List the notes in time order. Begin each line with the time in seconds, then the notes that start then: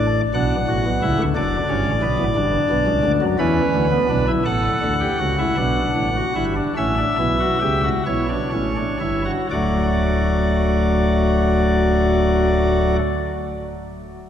Already playing: A1 A2 D5
0.34 B1 B2 D4 F#5
0.68 A1 A2 F#4
0.85 B1 B2
1.02 C#2 C#3 E4
1.19 D2 D3
1.36 F#1 F#2 D4 D5
1.69 G1 G2 C#4
1.86 A1 A2
2.02 B1 B2 B3
2.19 A1 A2
2.36 G1 G2 D4
2.70 B1 B2
2.86 C#2 C#3
3.04 D2 D3
3.21 F#2 F#3
3.39 E2 E3 C#4 B4
3.74 D2 D3
3.91 B3
4.09 B1 B2 D4
4.27 E4
4.45 A1 A2 A4 F#5
4.82 D2 D3
5.01 G4
5.20 C#2 C#3 F#4
5.39 E4
5.57 B1 B2 D4
5.96 A1 A2
6.16 F#4
6.36 G1 G2 E4
6.56 D4
6.77 A1 A2 C#4 E5
6.98 D4
7.19 B1 B2 E4
7.40 F#4
7.61 C#2 C#3 G4
7.84 F#4
8.06 B1 B2 E4 C#5
8.29 D4
8.53 A1 A2 C#4
8.76 D4
9.00 G1 G2 E4
9.25 F#4
9.51 D1 D2 F#3 A3 F#4 D5